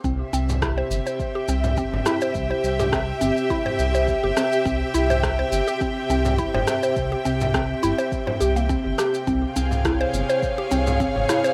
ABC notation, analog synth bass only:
X:1
M:4/4
L:1/16
Q:"Swing 16ths" 1/4=104
K:C
V:1 name="Analog synth bass" clef=bass
C,, z C,,3 z G,,, z3 C,,2 z G,,, z2 | C,, z C,,3 z G,,, z3 C,,2 z G,,, z2 | C,, z C,,3 z G,,, z3 C,,2 z G,,, z2 | C,, z C,,3 z G,,, z3 C,,2 z G,,, z2 |
C,, z C,,3 z G,,, z3 C,,2 z G,,, z2 |]